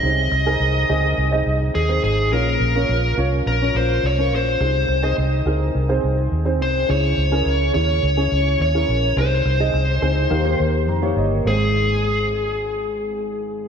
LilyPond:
<<
  \new Staff \with { instrumentName = "Lead electric guitar" } { \time 4/4 \key aes \major \tempo 4 = 105 ees''2. aes'8 aes'8 | bes'4. r8 bes'8 c''8 des''8 c''8~ | c''4 r2 r8 c''8 | des''4. des''4. des''4 |
c''2. r4 | aes'1 | }
  \new Staff \with { instrumentName = "Upright piano" } { \time 4/4 \key aes \major << { r1 | r1 | r1 | r1 |
r2. bes''8 ees''8 | r1 | } \\ { <c' ees' aes' c''>8 r16 <c' ees' aes' bes'>8 r16 <c' ees' aes' ees''>8 r16 <c' ees' aes' ees''>8. r16 <c' ees' aes' c''>8 r16 | <des' f' bes' des''>8 r16 <des' f' bes' des''>8 r16 <des' f' bes' des''>8 r16 <des' f' bes' des''>8. r16 <des' f' bes' des''>8 r16 | <c' ees' aes' c''>8 r16 <c' ees' aes' ees''>8 r16 <c' ees' aes' bes'>8 r16 <c' ees' aes' c''>8. r16 <c' ees' aes' c''>8 r16 | <des' fes' aes' des''>8 r16 <des' fes' aes' bes'>8 r16 <des' fes' aes' des''>8 r16 <des' fes' aes' des''>8. r16 <des' fes' aes' bes'>8 r16 |
<c' ees' aes' c''>8 r16 <c' ees' aes' ees''>8 r16 <c' ees' aes' c''>8 <bes ees' g' bes'>16 <bes ees' g' c''>8. r16 <bes ees' g' des''>8 r16 | <c' ees' aes' c''>1 | } >> }
  \new Staff \with { instrumentName = "Upright piano" } { \clef bass \time 4/4 \key aes \major c4. r2 r8 | bes,4. r2 r8 | c4. r2 r8 | des4. r2 r8 |
c4. r8 ees4. r8 | aes,,1 | }
  \new Staff \with { instrumentName = "Fingered electric bass" } { \clef bass \time 4/4 \key aes \major c,8 c,8 c,8 des,8 c,8 c,8 ees,8 aes,,8 | bes,,8 bes,,8 bes,,8 c,8 bes,,8 bes,,8 c,8 bes,,8 | c,8 c,8 c,8 des,8 c,8 c,8 ees,8 c,8 | des,8 des,8 des,8 ees,8 des,8 des,8 ees,8 bes,,8 |
c,8 c,8 c,8 des,8 ees,8 ees,8 f,8 g,,8 | aes,,1 | }
>>